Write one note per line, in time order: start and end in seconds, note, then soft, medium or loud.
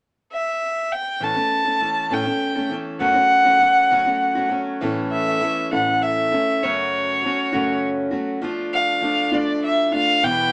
0.32 0.94 E5 medium
0.92 1.25 G5 medium
1.20 1.36 A2 soft
1.20 1.36 E3 medium
1.20 1.36 A3 soft
1.20 1.35 C#4 medium
1.20 1.33 A4 medium
1.20 2.14 A5 medium
1.34 1.67 A3 soft
1.34 1.66 C#4 soft
1.34 1.64 A4 soft
1.65 1.80 A3 soft
1.65 1.81 C#4 soft
1.65 1.81 A4 soft
1.80 2.09 E3 soft
1.80 2.10 A3 soft
1.80 2.10 C#4 soft
1.80 2.11 A4 soft
2.10 2.26 A2 medium
2.10 2.26 E3 soft
2.10 2.26 A3 soft
2.10 2.25 C#4 medium
2.10 2.23 A4 medium
2.10 2.72 G5 medium
2.25 2.57 A3 soft
2.25 2.55 C#4 soft
2.25 2.54 A4 soft
2.55 2.70 A3 soft
2.55 2.71 C#4 soft
2.55 2.71 A4 soft
2.69 3.00 E3 soft
2.69 2.99 A3 soft
2.69 3.00 C#4 soft
2.69 3.01 A4 soft
2.99 3.15 F#2 medium
2.99 3.16 C#3 medium
2.99 3.16 F#3 medium
2.99 3.15 A3 medium
2.99 3.14 C#4 soft
2.99 3.13 F#4 medium
2.99 4.47 F#5 medium
3.14 3.47 F#3 soft
3.14 3.46 A3 soft
3.14 3.44 C#4 soft
3.14 3.43 F#4 soft
3.44 3.58 F#3 soft
3.44 3.60 A3 soft
3.44 3.61 C#4 soft
3.44 3.60 F#4 soft
3.59 3.90 F#3 soft
3.59 3.91 A3 soft
3.59 3.91 C#4 soft
3.59 3.91 F#4 soft
3.90 4.06 F#2 soft
3.90 4.06 C#3 medium
3.90 4.07 F#3 soft
3.90 4.07 A3 medium
3.90 4.06 C#4 medium
3.90 4.04 F#4 medium
4.06 4.37 F#3 soft
4.06 4.36 A3 soft
4.06 4.35 C#4 soft
4.06 4.34 F#4 soft
4.35 4.48 F#3 soft
4.35 4.50 A3 soft
4.35 4.51 C#4 soft
4.35 4.51 F#4 medium
4.49 4.80 F#3 medium
4.49 4.81 A3 soft
4.49 4.82 C#4 soft
4.49 4.82 F#4 soft
4.81 5.41 A2 medium
4.81 5.39 E3 medium
4.81 5.42 A3 medium
4.81 5.42 C#4 medium
4.81 5.43 A4 medium
5.11 5.68 E5 medium
5.40 5.71 E3 soft
5.40 5.71 A3 soft
5.40 5.71 C#4 soft
5.40 5.70 A4 soft
5.72 6.33 A2 soft
5.72 6.33 E3 soft
5.72 6.35 A3 soft
5.72 6.32 C#4 soft
5.72 6.31 A4 soft
5.72 6.04 F#5 medium
6.02 6.65 E5 medium
6.31 6.63 A3 soft
6.31 6.63 C#4 soft
6.31 6.62 A4 soft
6.63 7.22 F#2 medium
6.63 7.22 C#3 medium
6.63 7.21 F#3 medium
6.63 7.24 A3 medium
6.63 7.23 C#4 medium
6.63 7.24 F#4 medium
6.63 7.83 C#5 medium
7.23 7.52 F#3 soft
7.23 7.52 A3 soft
7.23 7.52 C#4 soft
7.23 7.51 F#4 soft
7.52 8.14 F#2 soft
7.52 8.14 C#3 soft
7.52 8.13 F#3 soft
7.52 8.11 A3 soft
7.52 8.10 C#4 soft
7.52 8.10 F#4 medium
8.11 8.41 F#3 soft
8.11 8.41 A3 soft
8.11 8.42 C#4 soft
8.11 8.42 F#4 soft
8.41 9.00 F3 medium
8.41 9.01 A3 medium
8.41 9.03 D4 medium
8.41 9.03 F4 medium
8.73 9.36 F5 medium
9.01 9.32 F3 soft
9.01 9.32 A3 soft
9.01 9.31 D4 soft
9.05 9.30 F4 medium
9.31 9.93 F3 soft
9.31 9.93 A3 soft
9.31 9.92 D4 soft
9.31 9.90 F4 soft
9.31 9.63 D5 medium
9.64 9.91 E5 medium
9.91 10.24 A3 soft
9.91 10.23 D4 soft
9.91 10.22 F4 soft
9.91 10.25 F5 medium
10.23 10.52 E2 soft
10.23 10.52 B2 medium
10.23 10.52 E3 medium
10.23 10.52 G3 medium
10.23 10.52 B3 medium
10.23 10.52 E4 medium
10.23 10.52 G5 medium